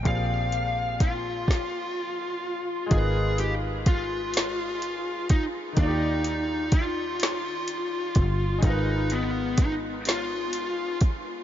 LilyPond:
<<
  \new Staff \with { instrumentName = "Grand piano" } { \time 6/8 \key aes \lydian \tempo 4. = 42 <bes, f c' g' aes' d''>4. r4. | <aes ees' f' bes' ces''>2. | <ees ees' f' ges' g' d''>2. | <aes ees' f' bes' ces''>2. | }
  \new Staff \with { instrumentName = "Lead electric guitar" } { \time 6/8 \key aes \lydian f''4 f'2 | aes'8 g'8 f'4. ees'8 | ees'4 f'2 | ees'8 ces'8 ees'8 f'4 r8 | }
  \new Staff \with { instrumentName = "Fingered electric bass" } { \clef bass \time 6/8 \key aes \lydian bes,,4. r4. | aes,,2. | ees,2~ ees,8 g,,8 | aes,,2. | }
  \new DrumStaff \with { instrumentName = "Drums" } \drummode { \time 6/8 <hh bd>8 hh8 <hh bd>8 <bd sn>4. | <hh bd>8 hh8 <hh bd>8 <hh sn>8 hh8 <hh bd>8 | <hh bd>8 hh8 <hh bd>8 <hh sn>8 hh8 <hh bd>8 | <hh bd>8 hh8 <hh bd>8 <hh sn>8 hh8 <hh bd>8 | }
>>